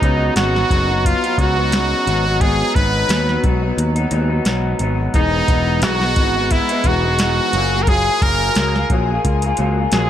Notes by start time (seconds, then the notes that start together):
Already playing: D#4
0.02 C#2 C#3 F#3 B3 D#4, kick, closed hi-hat
0.35 G#1 C#3 F#3 B3 D#4 F#4, snare, closed hi-hat
0.54 F#3 B3 D#4, snare
0.69 F#1 C#3 F#3 B3 D#4, kick, closed hi-hat
0.88 F#3 B3 D#4
1.05 F4, kick, closed hi-hat
1.23 F#3 B3 D#4, closed hi-hat
1.38 C#2 C#3 F#3 B3 D#4 F#4, kick, closed hi-hat
1.56 F#3 B3 D#4
1.71 C#3 F#3 B3 D#4, snare, closed hi-hat
2.06 G#1 G#2 F#3 B3 D#4, closed hi-hat
2.24 F#3 B3 D#4
2.40 G#2 F#3 B3 D#4 G#4, kick, closed hi-hat
2.74 G#1 G#2 F#3 B3 D#4 B4, kick, closed hi-hat
3.09 D#2 G#2 F#3 B3 D#4, snare, closed hi-hat
3.28 F#3 B3 D#4, snare
3.44 B1 G#2 F#3 B3 D#4, kick, closed hi-hat
3.62 F#3 B3 D#4
3.78 D#2, closed hi-hat
3.96 F#3 B3 D#4, closed hi-hat
4.10 D#2 G#2 F#3 B3 D#4, closed hi-hat
4.30 F#3 B3 D#4
4.45 B1 G#2 F#3 B3 D#4, snare, closed hi-hat
4.79 G#1 G#2 F#3 B3 D#4, closed hi-hat
5.14 E1 E3 G#3 B3 D#4, kick, closed hi-hat
5.48 E1 E3 G#3 B3 D#4, kick, closed hi-hat
5.82 B1 E3 G#3 B3 D#4 F#4, snare, closed hi-hat
6.01 G#3 B3 D#4, snare
6.16 G#1 E3 G#3 B3 D#4, kick, closed hi-hat
6.36 G#3 B3 D#4
6.51 E4, kick, closed hi-hat
6.69 G#3 B3 D#4, closed hi-hat
6.84 E1 E3 G#3 B3 F#4, kick, closed hi-hat
6.88 D#4
7.04 G#3 B3 D#4
7.19 E3 G#3 B3 D#4, snare, closed hi-hat
7.53 F#1 F#3 A#3 F4, closed hi-hat
7.58 G#4
7.73 A#3 F4 G#4
7.83 A#4
7.87 F#3 A#3 F4 G#4, kick, closed hi-hat
8.22 F#1 F#3 A#3 F4 A#4, kick, closed hi-hat
8.26 G#4
8.55 C#2 F#3 A#3 F4 G#4, snare, closed hi-hat
8.75 A#3 F4 G#4, snare
8.90 A#1 F#3 A#3 F4, kick, closed hi-hat
8.94 G#4
9.11 A#3 F4 G#4
9.25 C#2, kick, closed hi-hat
9.42 F4 G#4, closed hi-hat
9.47 A#3
9.57 C#2 F#3 A#3, closed hi-hat
9.61 F4 G#4
9.77 A#3 F4 G#4
9.92 A#1 F#3 A#3 F4 G#4, snare, closed hi-hat
9.96 G#4